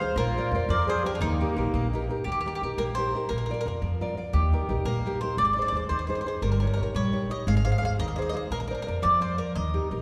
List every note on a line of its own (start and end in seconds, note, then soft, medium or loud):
0.00 0.14 D#4 soft
0.00 0.14 G#4 soft
0.00 0.16 C5 medium
0.00 0.14 C5 medium
0.00 0.15 F5 loud
0.16 0.39 A#1 loud
0.16 0.52 A#3 medium
0.16 0.65 F4 medium
0.16 0.70 A#4 loud
0.37 0.53 A#4 soft
0.37 0.54 C5 soft
0.37 0.54 D5 soft
0.51 0.63 F2 medium
0.51 0.82 A#4 soft
0.51 0.82 C5 soft
0.51 0.82 D5 medium
0.69 1.03 F2 loud
0.69 1.04 F3 medium
0.69 0.87 A#4 medium
0.69 0.87 D5 medium
0.87 1.03 G#4 medium
0.87 1.04 A#4 medium
0.87 1.04 C5 soft
0.87 1.04 C5 medium
0.87 1.04 D5 medium
1.04 1.14 G4 medium
1.04 1.18 A#4 soft
1.04 1.16 A#4 medium
1.04 1.18 C5 soft
1.04 1.19 D5 soft
1.11 1.19 D4 soft
1.11 1.21 F4 medium
1.21 1.44 D#2 loud
1.21 1.56 D#3 medium
1.21 1.88 A#3 medium
1.21 1.88 D#4 medium
1.40 1.56 D#4 soft
1.40 1.56 G4 soft
1.40 1.57 A#4 soft
1.56 1.67 A#1 medium
1.56 1.85 D#4 soft
1.56 1.85 G4 soft
1.56 1.86 A#4 medium
1.74 2.08 A#1 loud
1.74 2.09 A#3 medium
1.93 2.08 D#4 medium
1.93 2.09 G4 soft
1.93 2.09 A#4 medium
2.09 2.23 D#4 soft
2.09 2.23 G4 soft
2.09 2.24 A#4 soft
2.24 2.49 D#2 medium
2.24 2.61 D#3 soft
2.24 2.31 G4 medium
2.32 2.39 G4 medium
2.41 2.46 G4 medium
2.46 2.62 D#4 soft
2.46 2.63 G4 soft
2.46 2.54 G4 soft
2.46 2.63 A#4 soft
2.55 2.62 G4 medium
2.61 2.72 A#1 medium
2.61 2.91 D#4 soft
2.61 2.71 G4 soft
2.61 2.91 G4 soft
2.61 2.91 A#4 soft
2.78 3.12 A#1 medium
2.78 3.13 A#3 medium
2.78 2.83 A#4 medium
2.95 3.14 D#4 soft
2.95 3.14 G4 soft
2.95 3.15 A#4 medium
2.95 3.27 C5 medium
3.15 3.28 D#4 soft
3.15 3.28 G4 soft
3.15 3.29 A#4 soft
3.29 3.53 A#1 medium
3.29 3.65 A#3 medium
3.29 3.37 A#4 medium
3.38 3.45 A#4 medium
3.46 3.64 F4 soft
3.46 3.52 A#4 medium
3.50 3.65 A#4 soft
3.50 3.59 A#4 soft
3.50 3.66 D5 soft
3.61 3.67 A#4 medium
3.65 3.76 F2 medium
3.65 3.93 F4 soft
3.65 3.93 A#4 soft
3.65 3.74 A#4 soft
3.65 3.94 D5 soft
3.82 4.15 F2 medium
3.82 4.16 F3 medium
4.01 4.16 F4 medium
4.01 4.17 A#4 soft
4.01 4.17 D5 soft
4.17 4.30 F4 soft
4.17 4.31 A#4 soft
4.17 4.31 D5 soft
4.33 4.56 D#2 medium
4.33 4.68 D#3 soft
4.33 4.87 G4 medium
4.53 4.68 D#4 soft
4.53 4.68 G4 soft
4.53 4.69 A#4 soft
4.69 4.80 A#1 medium
4.69 4.97 D#4 soft
4.69 4.97 G4 soft
4.69 4.98 A#4 soft
4.85 5.19 A#1 medium
4.85 5.21 A#3 medium
4.85 5.18 A#4 medium
5.06 5.21 D#4 soft
5.06 5.21 G4 soft
5.06 5.22 A#4 medium
5.21 5.35 D#4 soft
5.21 5.35 G4 soft
5.21 5.36 A#4 soft
5.21 5.36 C5 medium
5.37 5.60 G#1 medium
5.37 5.73 G#3 soft
5.37 5.44 D5 medium
5.45 5.52 D5 medium
5.53 5.73 D#4 soft
5.53 5.60 D5 medium
5.58 5.73 G#4 soft
5.58 5.74 C5 soft
5.58 5.67 D5 medium
5.68 5.75 D5 medium
5.72 5.84 D#2 medium
5.72 6.02 D#4 soft
5.72 6.02 G#4 soft
5.72 6.03 C5 soft
5.77 5.83 D5 medium
5.89 6.24 D#2 medium
5.89 6.25 D#3 medium
5.89 5.97 C5 medium
5.99 6.06 C5 medium
6.07 6.25 D#4 soft
6.07 6.26 G#4 soft
6.07 6.13 C5 soft
6.07 6.25 C5 medium
6.15 6.20 C5 soft
6.21 6.27 C5 medium
6.26 6.40 D#4 soft
6.26 6.40 G#4 soft
6.26 6.40 C5 soft
6.26 6.35 C5 medium
6.42 6.65 G1 medium
6.42 6.78 G3 medium
6.42 6.50 A#4 medium
6.52 6.58 A#4 medium
6.60 6.75 D#4 soft
6.60 6.76 G4 soft
6.60 6.66 A#4 medium
6.60 6.76 C#5 soft
6.67 6.72 A#4 soft
6.74 6.89 A#1 medium
6.74 7.06 D#4 soft
6.74 7.06 G4 soft
6.74 6.80 A#4 medium
6.74 7.06 C#5 soft
6.83 6.89 A#4 medium
6.94 7.29 A#1 medium
6.94 7.29 G3 medium
6.94 7.29 C#5 medium
7.13 7.28 D#4 soft
7.13 7.29 G4 soft
7.13 7.30 C#5 soft
7.29 7.43 D#4 soft
7.29 7.44 G4 soft
7.29 7.44 C#5 soft
7.29 7.47 D#5 medium
7.47 7.70 G#1 loud
7.47 7.82 G#3 medium
7.47 7.55 F5 medium
7.57 7.64 F5 medium
7.65 7.81 D#4 soft
7.65 7.81 G#4 soft
7.65 7.82 C5 soft
7.65 7.71 F5 medium
7.72 7.77 F5 medium
7.78 7.93 D#2 medium
7.78 8.10 D#4 soft
7.78 8.10 G#4 soft
7.78 7.84 F5 medium
7.83 8.11 C5 soft
7.83 7.92 F5 medium
7.99 8.33 D#2 medium
7.99 8.34 D#3 medium
7.99 8.06 D#5 medium
8.08 8.15 D#5 medium
8.16 8.32 D#4 soft
8.16 8.33 G#4 soft
8.16 8.33 C5 medium
8.16 8.21 D#5 medium
8.22 8.28 D#5 medium
8.29 8.47 D#4 soft
8.29 8.35 D#5 medium
8.34 8.47 G#4 soft
8.34 8.48 C5 soft
8.34 8.43 D#5 medium
8.51 8.73 A#1 medium
8.51 8.85 A#3 medium
8.51 8.59 A#4 medium
8.60 8.66 A#4 medium
8.68 8.73 A#4 medium
8.68 8.85 A#4 soft
8.68 8.86 C5 soft
8.68 8.86 D5 soft
8.75 8.81 A#4 medium
8.82 8.87 A#4 medium
8.82 9.14 A#4 soft
8.87 8.98 F2 medium
8.87 8.95 A#4 medium
8.87 9.14 C5 soft
8.87 9.15 D5 soft
9.02 9.37 F2 loud
9.02 9.37 F3 medium
9.02 9.20 D5 medium
9.21 9.37 A#4 soft
9.21 9.37 C5 soft
9.21 9.37 C5 medium
9.21 9.37 D5 medium
9.38 9.51 A#4 soft
9.38 9.54 A#4 medium
9.38 9.52 C5 soft
9.38 9.52 D5 soft
9.55 9.79 D#2 medium
9.55 9.90 D#3 soft
9.55 10.02 D#5 medium
9.74 9.90 D#4 soft
9.74 9.90 G4 soft
9.74 9.91 A#4 soft
9.91 10.02 A#1 medium
9.91 10.02 D#4 soft
9.91 10.02 G4 soft
9.91 10.02 A#4 soft